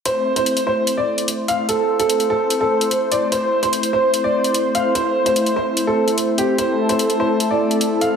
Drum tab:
HH |x--xxx--x--xx-x-|x--xxx--x--xx-x-|x--xxx--x--xx-x-|x--xxx--x--xx-x-|

HH |x--xxx--x--xx-x-|